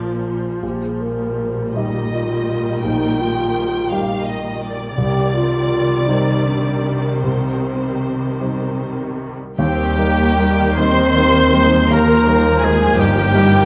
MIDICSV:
0, 0, Header, 1, 12, 480
1, 0, Start_track
1, 0, Key_signature, -3, "minor"
1, 0, Tempo, 754717
1, 399, Time_signature, 6, 3, 24, 8
1, 1352, Tempo, 716846
1, 3752, Tempo, 763359
1, 4712, Tempo, 783290
1, 6152, Key_signature, -3, "major"
1, 7112, Tempo, 729040
1, 8757, End_track
2, 0, Start_track
2, 0, Title_t, "Violin section"
2, 0, Program_c, 0, 48
2, 6154, Note_on_c, 0, 79, 77
2, 6857, Note_off_c, 0, 79, 0
2, 6890, Note_on_c, 0, 84, 96
2, 7606, Note_off_c, 0, 84, 0
2, 7617, Note_on_c, 0, 82, 79
2, 8081, Note_on_c, 0, 80, 82
2, 8087, Note_off_c, 0, 82, 0
2, 8318, Note_off_c, 0, 80, 0
2, 8324, Note_on_c, 0, 79, 91
2, 8757, Note_off_c, 0, 79, 0
2, 8757, End_track
3, 0, Start_track
3, 0, Title_t, "Violin section"
3, 0, Program_c, 1, 48
3, 1111, Note_on_c, 1, 75, 47
3, 1803, Note_off_c, 1, 75, 0
3, 1826, Note_on_c, 1, 79, 59
3, 2547, Note_off_c, 1, 79, 0
3, 2550, Note_on_c, 1, 77, 60
3, 2781, Note_on_c, 1, 75, 58
3, 2790, Note_off_c, 1, 77, 0
3, 3019, Note_on_c, 1, 74, 70
3, 3025, Note_off_c, 1, 75, 0
3, 4706, Note_on_c, 1, 72, 41
3, 4707, Note_off_c, 1, 74, 0
3, 5766, Note_off_c, 1, 72, 0
3, 6150, Note_on_c, 1, 67, 68
3, 6856, Note_off_c, 1, 67, 0
3, 6882, Note_on_c, 1, 72, 75
3, 7599, Note_on_c, 1, 70, 68
3, 7601, Note_off_c, 1, 72, 0
3, 8074, Note_on_c, 1, 68, 72
3, 8078, Note_off_c, 1, 70, 0
3, 8313, Note_on_c, 1, 67, 78
3, 8314, Note_off_c, 1, 68, 0
3, 8757, Note_off_c, 1, 67, 0
3, 8757, End_track
4, 0, Start_track
4, 0, Title_t, "Flute section"
4, 0, Program_c, 2, 73
4, 6887, Note_on_c, 2, 75, 65
4, 7100, Note_off_c, 2, 75, 0
4, 7115, Note_on_c, 2, 70, 58
4, 7359, Note_off_c, 2, 70, 0
4, 7364, Note_on_c, 2, 72, 68
4, 8319, Note_on_c, 2, 70, 77
4, 8320, Note_off_c, 2, 72, 0
4, 8757, Note_off_c, 2, 70, 0
4, 8757, End_track
5, 0, Start_track
5, 0, Title_t, "Oboe"
5, 0, Program_c, 3, 68
5, 6153, Note_on_c, 3, 67, 73
5, 6882, Note_on_c, 3, 72, 80
5, 6891, Note_off_c, 3, 67, 0
5, 7601, Note_off_c, 3, 72, 0
5, 7610, Note_on_c, 3, 70, 70
5, 8092, Note_on_c, 3, 68, 74
5, 8101, Note_off_c, 3, 70, 0
5, 8326, Note_on_c, 3, 67, 81
5, 8336, Note_off_c, 3, 68, 0
5, 8757, Note_off_c, 3, 67, 0
5, 8757, End_track
6, 0, Start_track
6, 0, Title_t, "Alto flute"
6, 0, Program_c, 4, 73
6, 0, Note_on_c, 4, 65, 47
6, 394, Note_off_c, 4, 65, 0
6, 398, Note_on_c, 4, 67, 55
6, 531, Note_on_c, 4, 68, 52
6, 540, Note_off_c, 4, 67, 0
6, 637, Note_on_c, 4, 70, 60
6, 647, Note_off_c, 4, 68, 0
6, 1114, Note_on_c, 4, 67, 55
6, 1124, Note_off_c, 4, 70, 0
6, 1356, Note_on_c, 4, 65, 58
6, 1366, Note_off_c, 4, 67, 0
6, 1826, Note_off_c, 4, 65, 0
6, 1830, Note_on_c, 4, 63, 66
6, 2072, Note_on_c, 4, 65, 66
6, 2082, Note_off_c, 4, 63, 0
6, 2553, Note_on_c, 4, 67, 67
6, 2563, Note_off_c, 4, 65, 0
6, 2792, Note_off_c, 4, 67, 0
6, 3267, Note_on_c, 4, 67, 80
6, 3491, Note_off_c, 4, 67, 0
6, 3506, Note_on_c, 4, 65, 80
6, 3977, Note_on_c, 4, 63, 72
6, 3986, Note_off_c, 4, 65, 0
6, 4216, Note_on_c, 4, 62, 66
6, 4225, Note_off_c, 4, 63, 0
6, 4697, Note_off_c, 4, 62, 0
6, 4701, Note_on_c, 4, 60, 53
6, 5883, Note_off_c, 4, 60, 0
6, 8757, End_track
7, 0, Start_track
7, 0, Title_t, "Grand piano"
7, 0, Program_c, 5, 0
7, 0, Control_c, 5, 64, 127
7, 0, Note_on_c, 5, 34, 38
7, 0, Note_on_c, 5, 53, 28
7, 0, Note_on_c, 5, 65, 27
7, 0, Note_on_c, 5, 74, 29
7, 375, Note_off_c, 5, 53, 0
7, 376, Note_off_c, 5, 65, 0
7, 377, Note_off_c, 5, 74, 0
7, 400, Note_off_c, 5, 34, 0
7, 400, Note_on_c, 5, 34, 38
7, 412, Control_c, 5, 64, 0
7, 503, Control_c, 5, 64, 127
7, 1095, Note_off_c, 5, 34, 0
7, 1119, Note_on_c, 5, 55, 31
7, 1121, Note_on_c, 5, 63, 29
7, 1124, Note_on_c, 5, 75, 33
7, 1808, Note_off_c, 5, 55, 0
7, 1809, Note_off_c, 5, 63, 0
7, 1811, Note_off_c, 5, 75, 0
7, 1833, Note_on_c, 5, 34, 45
7, 1845, Control_c, 5, 64, 0
7, 1946, Control_c, 5, 64, 127
7, 2529, Note_off_c, 5, 34, 0
7, 2547, Note_on_c, 5, 55, 40
7, 2552, Note_on_c, 5, 63, 37
7, 2554, Note_on_c, 5, 79, 43
7, 3240, Note_off_c, 5, 55, 0
7, 3242, Note_off_c, 5, 63, 0
7, 3243, Note_off_c, 5, 79, 0
7, 3261, Note_on_c, 5, 36, 52
7, 3279, Control_c, 5, 64, 0
7, 3380, Control_c, 5, 64, 127
7, 3962, Note_off_c, 5, 36, 0
7, 3987, Note_on_c, 5, 55, 38
7, 3988, Note_on_c, 5, 51, 37
7, 3989, Note_on_c, 5, 72, 41
7, 4687, Note_off_c, 5, 55, 0
7, 4688, Note_off_c, 5, 51, 0
7, 4689, Note_off_c, 5, 72, 0
7, 4711, Note_on_c, 5, 36, 38
7, 4723, Control_c, 5, 64, 0
7, 4846, Control_c, 5, 64, 127
7, 5409, Note_off_c, 5, 36, 0
7, 5432, Note_on_c, 5, 55, 26
7, 5433, Note_on_c, 5, 63, 25
7, 5435, Note_on_c, 5, 72, 28
7, 6128, Note_off_c, 5, 55, 0
7, 6128, Note_off_c, 5, 63, 0
7, 6130, Note_off_c, 5, 72, 0
7, 6152, Note_on_c, 5, 39, 57
7, 6164, Control_c, 5, 64, 0
7, 6282, Control_c, 5, 64, 127
7, 6386, Note_off_c, 5, 39, 0
7, 6393, Note_on_c, 5, 55, 40
7, 6394, Note_on_c, 5, 63, 41
7, 6398, Note_on_c, 5, 70, 46
7, 6615, Note_off_c, 5, 55, 0
7, 6616, Note_off_c, 5, 63, 0
7, 6618, Note_off_c, 5, 70, 0
7, 6643, Note_on_c, 5, 55, 45
7, 6645, Note_on_c, 5, 63, 41
7, 6648, Note_on_c, 5, 70, 46
7, 6858, Note_off_c, 5, 55, 0
7, 6860, Note_off_c, 5, 63, 0
7, 6861, Note_off_c, 5, 70, 0
7, 6885, Note_on_c, 5, 55, 43
7, 6888, Note_on_c, 5, 63, 41
7, 6891, Note_on_c, 5, 70, 44
7, 7092, Note_off_c, 5, 55, 0
7, 7094, Note_off_c, 5, 63, 0
7, 7095, Note_off_c, 5, 70, 0
7, 7122, Note_on_c, 5, 55, 42
7, 7124, Note_on_c, 5, 63, 43
7, 7126, Note_on_c, 5, 70, 46
7, 7338, Note_off_c, 5, 55, 0
7, 7339, Note_off_c, 5, 63, 0
7, 7340, Note_off_c, 5, 70, 0
7, 7361, Note_on_c, 5, 55, 40
7, 7363, Note_on_c, 5, 63, 39
7, 7366, Note_on_c, 5, 70, 46
7, 7578, Note_off_c, 5, 55, 0
7, 7579, Note_off_c, 5, 63, 0
7, 7581, Note_off_c, 5, 70, 0
7, 7608, Note_on_c, 5, 39, 61
7, 7612, Control_c, 5, 64, 0
7, 7703, Control_c, 5, 64, 127
7, 7837, Note_off_c, 5, 39, 0
7, 7844, Note_on_c, 5, 55, 44
7, 7848, Note_on_c, 5, 63, 43
7, 7853, Note_on_c, 5, 70, 46
7, 8057, Note_off_c, 5, 55, 0
7, 8059, Note_off_c, 5, 63, 0
7, 8062, Note_off_c, 5, 70, 0
7, 8087, Note_on_c, 5, 58, 47
7, 8090, Note_on_c, 5, 63, 49
7, 8095, Note_on_c, 5, 70, 54
7, 8297, Note_off_c, 5, 58, 0
7, 8299, Note_off_c, 5, 63, 0
7, 8301, Note_off_c, 5, 70, 0
7, 8322, Note_on_c, 5, 55, 46
7, 8325, Note_on_c, 5, 63, 47
7, 8330, Note_on_c, 5, 70, 51
7, 8534, Note_off_c, 5, 55, 0
7, 8535, Note_off_c, 5, 63, 0
7, 8538, Note_off_c, 5, 70, 0
7, 8555, Note_on_c, 5, 55, 51
7, 8559, Note_on_c, 5, 63, 48
7, 8562, Note_on_c, 5, 70, 52
7, 8757, Note_off_c, 5, 55, 0
7, 8757, Note_off_c, 5, 63, 0
7, 8757, Note_off_c, 5, 70, 0
7, 8757, End_track
8, 0, Start_track
8, 0, Title_t, "French horn section"
8, 0, Program_c, 6, 60
8, 6153, Note_on_c, 6, 55, 69
8, 6857, Note_off_c, 6, 55, 0
8, 6891, Note_on_c, 6, 60, 82
8, 7603, Note_on_c, 6, 58, 64
8, 7606, Note_off_c, 6, 60, 0
8, 8071, Note_off_c, 6, 58, 0
8, 8083, Note_on_c, 6, 56, 72
8, 8316, Note_on_c, 6, 55, 79
8, 8319, Note_off_c, 6, 56, 0
8, 8757, Note_off_c, 6, 55, 0
8, 8757, End_track
9, 0, Start_track
9, 0, Title_t, "Viola section"
9, 0, Program_c, 7, 48
9, 0, Note_on_c, 7, 53, 48
9, 0, Note_on_c, 7, 58, 39
9, 242, Note_off_c, 7, 58, 0
9, 397, Note_on_c, 7, 55, 38
9, 1113, Note_off_c, 7, 53, 0
9, 1115, Note_on_c, 7, 51, 41
9, 3239, Note_off_c, 7, 55, 0
9, 3252, Note_off_c, 7, 51, 0
9, 3260, Note_on_c, 7, 51, 54
9, 3262, Note_on_c, 7, 55, 51
9, 5995, Note_off_c, 7, 51, 0
9, 5996, Note_off_c, 7, 55, 0
9, 6152, Note_on_c, 7, 51, 55
9, 6153, Note_on_c, 7, 60, 55
9, 6377, Note_off_c, 7, 60, 0
9, 6392, Note_on_c, 7, 58, 55
9, 6633, Note_off_c, 7, 58, 0
9, 6640, Note_on_c, 7, 58, 55
9, 6876, Note_off_c, 7, 58, 0
9, 6877, Note_on_c, 7, 55, 59
9, 7101, Note_off_c, 7, 55, 0
9, 7108, Note_on_c, 7, 55, 60
9, 7350, Note_off_c, 7, 55, 0
9, 7364, Note_on_c, 7, 56, 61
9, 7575, Note_off_c, 7, 51, 0
9, 7600, Note_on_c, 7, 53, 64
9, 7601, Note_on_c, 7, 58, 58
9, 7603, Note_off_c, 7, 56, 0
9, 8308, Note_off_c, 7, 58, 0
9, 8316, Note_on_c, 7, 58, 59
9, 8757, Note_off_c, 7, 53, 0
9, 8757, Note_off_c, 7, 58, 0
9, 8757, End_track
10, 0, Start_track
10, 0, Title_t, "Timpani"
10, 0, Program_c, 8, 47
10, 6150, Note_on_c, 8, 51, 78
10, 6855, Note_off_c, 8, 51, 0
10, 8757, End_track
11, 0, Start_track
11, 0, Title_t, "Cello section"
11, 0, Program_c, 10, 48
11, 0, Note_on_c, 10, 46, 43
11, 242, Note_off_c, 10, 46, 0
11, 394, Note_on_c, 10, 46, 42
11, 3238, Note_off_c, 10, 46, 0
11, 3263, Note_on_c, 10, 48, 58
11, 5996, Note_off_c, 10, 48, 0
11, 6148, Note_on_c, 10, 39, 60
11, 8288, Note_off_c, 10, 39, 0
11, 8322, Note_on_c, 10, 43, 65
11, 8757, Note_off_c, 10, 43, 0
11, 8757, End_track
12, 0, Start_track
12, 0, Title_t, "Double bass section"
12, 0, Program_c, 11, 48
12, 6152, Note_on_c, 11, 39, 65
12, 8290, Note_off_c, 11, 39, 0
12, 8318, Note_on_c, 11, 31, 66
12, 8757, Note_off_c, 11, 31, 0
12, 8757, End_track
0, 0, End_of_file